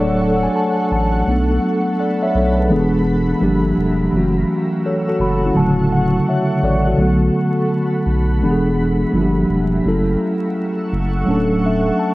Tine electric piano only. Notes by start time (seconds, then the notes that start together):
Already playing: F#3 A3 D4 A4 C#5 D5
0.22 F#5
0.44 G#5
0.56 A5
0.93 A5
1.26 F#3 A3 B3 D4
1.31 A4
2.00 D5 F#5
2.23 C#5 E5
2.36 A4 C#5
2.58 G#4 B4
2.70 E3 G#3 B3 D4 G#4
3.40 F3 G3 A#3 D4 G4
4.12 E3 F#3 A3
4.16 C#4 F#4
4.86 A4 C#5
5.09 F#4 A4
5.21 F#4 B5
5.45 C#4 E4
5.54 C#3 D3 F#3 A3 A5
5.60 F#4
5.92 F#5
6.29 C#5 E5 F#5
6.64 A4 C#5 D5
6.87 F#4 A4
6.97 D3 F#3 A3 B3
7.02 F#4
8.41 E3 G#3 B3 D4 G4
8.50 G#4
9.12 F3 G3 A#3 D4 F4
9.22 G4
9.83 F#3 A3 C#4
9.87 E4 A4
11.26 F#3 A3 C#4 D4
11.31 A4
11.66 E5
11.88 F#5
11.99 A5